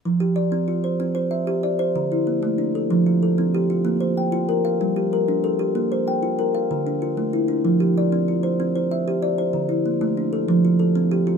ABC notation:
X:1
M:12/8
L:1/8
Q:3/8=127
K:F
V:1 name="Kalimba"
z G d2 F c2 c e2 d c- | c E B,2 D A2 F A2 G F- | F c g2 B f2 G B2 A G- | G c g2 B f2 D F2 E D- |
D G d2 F c2 c e2 d c- | c E B,2 D A2 F A2 G F |]
V:2 name="Kalimba"
F,2 z C2 z C2 z G2 z | D,2 z A,2 z F,2 z C2 z | B,2 z F2 z G,2 z D2 z | B,2 z F2 z D,2 z A,2 z |
F,2 z C2 z C2 z G2 z | D,2 z A,2 z F,2 z C2 z |]